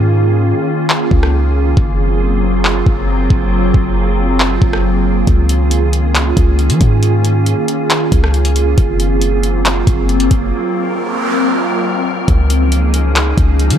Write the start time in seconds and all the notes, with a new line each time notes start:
Already playing: G#2 D#3 A#3 C#4 F4 G#4
0.90 clap
1.11 C#2, kick
1.23 cross-stick
1.77 F#1 F#3 C4 F4, kick
2.65 clap
2.86 F#1, kick
3.30 F#1, kick
3.74 F#1, kick
4.40 clap
4.62 F#1, kick
4.73 cross-stick
5.27 C#2 D#3 C#4 G#4, kick, closed hi-hat
5.49 closed hi-hat
5.71 closed hi-hat
5.93 closed hi-hat
6.15 clap, closed hi-hat
6.37 C#2, kick, closed hi-hat
6.59 closed hi-hat
6.70 F3, closed hi-hat
6.81 G#2, kick, closed hi-hat
7.03 closed hi-hat
7.25 closed hi-hat
7.46 closed hi-hat
7.68 closed hi-hat
7.90 clap, closed hi-hat
8.12 C#2, kick, closed hi-hat
8.24 cross-stick
8.34 closed hi-hat
8.45 closed hi-hat
8.56 closed hi-hat
8.78 F#1 F#3 A#3 C4, kick, closed hi-hat
9.00 closed hi-hat
9.21 closed hi-hat
9.43 closed hi-hat
9.65 clap, closed hi-hat
9.87 F#1, kick, closed hi-hat
10.09 closed hi-hat
10.20 closed hi-hat
10.31 F#1, kick, closed hi-hat
10.53 A#4, noise sweep
12.28 C#2 F3 A#3 C#4 D#4 G#4, kick, closed hi-hat
12.50 closed hi-hat
12.72 closed hi-hat
12.94 closed hi-hat
13.16 clap, closed hi-hat
13.38 C#2, kick, closed hi-hat
13.59 closed hi-hat
13.70 F3, closed hi-hat